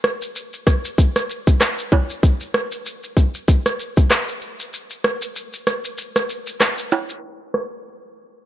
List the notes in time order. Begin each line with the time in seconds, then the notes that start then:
0.04 cross-stick, closed hi-hat, shaker
0.22 maracas, shaker
0.36 maracas, shaker
0.53 shaker, maracas
0.67 kick, cross-stick, closed hi-hat, shaker, maracas
0.85 shaker, maracas
0.98 kick, shaker, maracas
1.16 cross-stick, shaker, maracas
1.30 closed hi-hat, shaker, maracas
1.47 kick, shaker, maracas
1.61 cross-stick, clap, shaker, maracas
1.78 shaker, maracas
1.92 kick, closed hi-hat, high timbale, shaker
2.10 shaker, maracas
2.23 kick, shaker, maracas
2.40 maracas, shaker
2.54 cross-stick, closed hi-hat, shaker
2.72 maracas, shaker
2.86 shaker, maracas
3.03 shaker, maracas
3.17 kick, closed hi-hat, shaker, maracas
3.34 shaker, maracas
3.48 kick, shaker, maracas
3.66 cross-stick, shaker, maracas
3.79 closed hi-hat, shaker, maracas
3.97 kick, maracas, shaker
4.11 cross-stick, clap, shaker, maracas
4.28 shaker, maracas
4.42 closed hi-hat, shaker
4.59 maracas, shaker
4.73 maracas, shaker
4.90 maracas, shaker
5.04 cross-stick, closed hi-hat, shaker
5.22 maracas, shaker
5.36 shaker, maracas
5.53 shaker, maracas
5.67 cross-stick, closed hi-hat, shaker, maracas
5.84 maracas, shaker
5.98 maracas, shaker
6.16 cross-stick, shaker, maracas
6.30 closed hi-hat, shaker, maracas
6.47 maracas, shaker
6.61 cross-stick, clap, shaker, maracas
6.78 maracas, shaker
6.92 closed hi-hat, high timbale, shaker
7.09 maracas, shaker
7.54 cross-stick